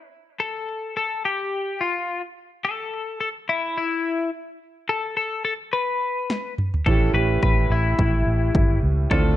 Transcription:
0.40 0.96 A4 medium
0.97 1.25 A4 medium
1.25 1.82 G4 medium
1.81 2.21 F4 medium
2.65 3.19 A4 medium
3.21 3.28 A4 medium
3.49 3.76 E4 medium
3.78 4.30 E4 medium
4.89 5.16 A4 medium
5.17 5.44 A4 medium
5.45 5.52 A4 medium
5.73 6.54 B4 medium
6.30 snare soft
6.58 mid tom medium
6.74 floor tom medium
6.86 7.09 A1 medium
6.86 7.67 A2 soft
6.86 7.67 E3 soft
6.86 7.08 A3 medium
6.86 7.09 C#4 medium
6.86 7.09 E4 medium
6.86 7.09 G4 medium
6.86 7.14 A4 medium
6.86 kick medium
7.14 7.37 A1 medium
7.14 8.00 A3 medium
7.14 8.01 C#4 soft
7.14 8.01 E4 soft
7.14 8.01 G4 medium
7.14 7.42 B4 medium
7.43 7.66 A1 medium
7.43 7.71 B4 medium
7.43 kick medium
7.70 7.93 A1 medium
7.70 8.79 E4 medium
7.99 8.22 A1 medium
7.99 kick medium
8.27 8.50 A1 medium
8.55 8.78 G1 medium
8.55 kick loud
8.83 9.06 C#2 medium
9.10 9.34 D2 medium
9.10 9.37 A2 soft
9.10 9.33 A3 medium
9.10 9.33 C4 medium
9.10 9.33 D4 medium
9.10 9.33 F4 medium
9.10 9.37 A4 medium
9.10 kick loud

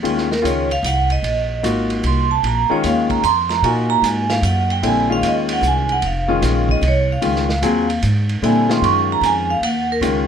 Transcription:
0.03 0.43 D#2 medium
0.03 0.28 D#3 medium
0.03 0.28 G#3 medium
0.03 0.28 C#4 medium
0.03 0.28 F4 medium
0.03 ride medium
0.18 snare soft
0.32 0.45 A#4 medium
0.32 snare soft
0.42 0.82 C#2 medium
0.42 0.67 D#3 medium
0.42 0.67 G#3 medium
0.42 0.67 C#4 medium
0.42 0.67 F4 medium
0.42 hi-hat pedal soft
0.42 ride medium
0.46 0.71 C#5 medium
0.71 0.85 F5 loud
0.71 ride soft
0.83 1.22 C2 medium
0.83 1.11 F#5 loud
0.83 hi-hat pedal medium
0.83 ride medium
1.10 1.61 D#5 medium
1.10 ride soft
1.22 1.62 A#1 medium
1.22 ride medium
1.63 2.02 G#1 medium
1.63 2.24 A#3 medium
1.63 2.25 D#4 medium
1.63 2.25 F4 medium
1.63 2.25 F#4 medium
1.63 hi-hat pedal medium
1.63 ride medium
1.90 ride soft
2.03 2.42 C2 medium
2.03 2.31 C6 medium
2.03 ride medium
2.31 2.44 A5 medium
2.43 2.68 A#1 medium
2.43 2.71 A#5 medium
2.43 ride medium
2.70 3.21 D#3 medium
2.70 3.21 G#3 medium
2.70 3.21 C#4 medium
2.70 3.21 F4 medium
2.70 2.84 C#5 medium
2.70 muted upright bass stroke soft
2.84 3.22 D#2 medium
2.84 3.10 F5 medium
2.84 hi-hat pedal soft
2.84 ride medium
3.10 3.24 A#5 loud
3.10 kick soft
3.10 ride soft
3.23 3.62 F2 medium
3.23 3.50 C6 loud
3.23 hi-hat pedal soft
3.23 ride medium
3.49 3.63 A#5 medium
3.49 snare soft
3.49 ride soft
3.62 4.01 A#2 medium
3.62 4.75 A#3 medium
3.62 4.75 D#4 medium
3.62 4.75 F4 medium
3.62 4.75 F#4 medium
3.62 3.90 G#5 medium
3.62 ride medium
3.90 4.03 A#5 loud
4.02 4.41 G#2 medium
4.02 4.30 G#5 medium
4.02 hi-hat pedal medium
4.02 ride medium
4.30 4.43 F5 medium
4.30 snare medium
4.30 ride soft
4.42 4.81 F#2 medium
4.42 4.70 F#5 medium
4.42 hi-hat pedal soft
4.42 ride medium
4.70 4.84 G5 medium
4.70 ride soft
4.83 5.21 A#1 medium
4.83 5.07 D3 medium
4.83 5.07 G3 medium
4.83 5.07 C4 medium
4.83 5.07 E4 medium
4.83 5.10 G#5 medium
4.83 ride medium
5.09 5.94 D#3 medium
5.09 5.95 G#3 medium
5.09 5.95 C#4 medium
5.09 5.95 F4 medium
5.09 5.24 F5 medium
5.21 5.61 D#2 medium
5.21 hi-hat pedal soft
5.21 ride medium
5.27 5.50 D#5 medium
5.49 ride medium
5.53 5.64 F#5 loud
5.61 6.01 C2 medium
5.61 hi-hat pedal medium
5.67 5.91 G#5 loud
5.89 6.04 F#5 medium
5.89 ride soft
6.02 6.41 F1 medium
6.02 ride medium
6.06 6.67 F5 medium
6.28 6.80 D#3 medium
6.28 6.79 G#3 medium
6.28 6.80 C#4 medium
6.28 6.80 F4 medium
6.42 6.81 A#1 medium
6.42 snare soft
6.42 hi-hat pedal medium
6.42 ride medium
6.69 6.83 D#5 loud
6.69 kick medium
6.81 7.21 C2 loud
6.81 ride medium
6.88 7.11 C#5 medium
7.12 8.00 F5 medium
7.21 7.61 C#2 medium
7.21 7.46 D#3 medium
7.21 7.46 G#3 medium
7.21 7.46 C#4 medium
7.21 7.46 F4 medium
7.21 ride medium
7.36 snare soft
7.49 snare soft
7.62 8.01 D#2 medium
7.62 7.86 F#3 medium
7.62 7.86 C4 medium
7.62 7.86 F4 medium
7.62 7.86 G#4 medium
7.62 hi-hat pedal medium
7.62 ride medium
7.90 ride medium
8.02 8.41 G#2 medium
8.02 hi-hat pedal soft
8.02 ride medium
8.29 ride soft
8.42 8.81 A#2 medium
8.42 8.66 D3 medium
8.42 8.66 G3 medium
8.42 8.66 C4 medium
8.42 8.66 E4 medium
8.42 8.69 G#5 medium
8.42 ride medium
8.69 9.54 D#3 medium
8.69 9.54 G#3 medium
8.69 9.54 C#4 medium
8.69 9.54 F4 medium
8.69 8.83 C6 loud
8.69 snare medium
8.82 9.21 F#2 medium
8.82 9.08 C#6 medium
8.82 ride medium
9.12 9.24 A#5 loud
9.21 9.60 F2 loud
9.21 hi-hat pedal soft
9.21 ride medium
9.26 9.49 G#5 loud
9.50 9.63 F5 medium
9.61 10.00 D#2 medium
9.61 9.89 F#5 medium
9.61 ride medium
9.92 9.99 A#4 medium
10.01 10.27 C#2 medium
10.01 10.25 D#3 medium
10.01 10.26 G#3 medium
10.01 10.25 C#4 medium
10.01 10.26 F4 medium
10.01 hi-hat pedal medium
10.01 ride medium

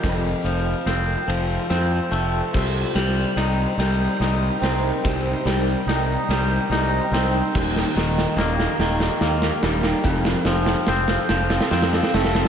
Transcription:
0.00 0.32 F1 medium
0.00 2.12 F2 medium
0.00 2.49 F4 medium
0.00 12.48 G5 medium
0.00 kick medium
0.04 2.52 A4 medium
0.04 7.51 C5 medium
0.04 snare medium
0.04 ride medium
0.44 0.73 F1 medium
0.44 1.27 F3 medium
0.44 ride medium
0.86 1.15 F1 medium
0.86 1.69 C4 medium
0.86 snare medium
0.86 ride medium
1.27 1.56 F1 medium
1.27 2.54 F3 medium
1.27 ride medium
1.70 1.99 F2 medium
1.70 3.37 C4 medium
1.70 snare medium
1.70 ride medium
2.11 2.40 F1 medium
2.11 2.54 A3 medium
2.11 ride medium
2.53 2.83 C2 medium
2.53 4.62 C3 medium
2.53 10.00 D#4 medium
2.53 7.50 A#4 medium
2.53 kick medium
2.53 snare medium
2.53 crash medium
2.95 3.24 C2 medium
2.95 3.79 G3 medium
2.95 snare medium
2.95 ride medium
3.36 3.65 C2 medium
3.36 4.21 D#4 medium
3.36 snare medium
3.36 ride medium
3.77 4.06 C2 medium
3.77 5.46 G3 medium
3.77 snare medium
3.77 ride medium
4.20 4.49 C2 medium
4.20 5.88 D#4 medium
4.20 snare medium
4.20 ride medium
4.61 4.90 C2 medium
4.61 6.71 C4 medium
4.61 snare medium
4.61 ride medium
5.04 5.33 C2 medium
5.04 7.13 C3 medium
5.04 kick loud
5.04 snare medium
5.04 ride medium
5.45 5.74 C2 medium
5.45 6.30 G3 medium
5.45 snare medium
5.45 ride medium
5.86 6.15 C2 medium
5.86 6.70 D#4 medium
5.86 snare medium
5.86 ride medium
6.28 6.57 C2 medium
6.28 7.96 G3 medium
6.28 snare medium
6.28 ride medium
6.69 6.98 C2 medium
6.69 7.55 D#4 medium
6.69 snare medium
6.69 ride medium
7.11 7.40 C2 medium
7.11 7.55 C4 medium
7.11 snare medium
7.11 ride medium
7.53 7.83 D#1 medium
7.53 9.63 D#2 medium
7.53 10.01 A#4 medium
7.53 12.48 F5 medium
7.53 kick loud
7.53 snare medium
7.53 crash medium
7.76 snare loud
7.96 8.24 D#1 medium
7.96 8.79 D#3 medium
7.96 snare medium
8.18 snare medium
8.36 8.65 D#1 medium
8.36 9.21 A#3 medium
8.36 snare medium
8.60 snare loud
8.79 9.08 D#1 medium
8.79 10.05 D#3 medium
8.79 snare loud
9.00 snare loud
9.21 9.49 D#2 medium
9.21 10.05 A#3 medium
9.21 snare loud
9.42 snare loud
9.63 9.91 D#1 medium
9.63 10.07 G3 medium
9.63 snare loud
9.83 snare loud
10.04 10.33 F1 medium
10.04 12.13 F2 medium
10.04 12.48 C4 medium
10.04 12.48 A4 medium
10.04 kick loud
10.04 snare medium
10.25 snare loud
10.45 10.74 F1 medium
10.45 11.28 F3 medium
10.45 snare loud
10.66 snare loud
10.87 11.16 F1 medium
10.87 11.70 C4 medium
10.87 snare loud
11.08 snare loud
11.29 11.58 F1 medium
11.29 12.48 F3 medium
11.29 snare loud
11.50 snare loud
11.61 snare loud
11.71 12.00 F2 medium
11.71 12.48 C4 medium
11.71 snare loud
11.82 snare loud
11.93 snare loud
12.03 snare loud
12.14 12.42 F1 medium
12.14 12.48 A3 medium
12.14 snare loud
12.25 snare loud
12.35 snare loud

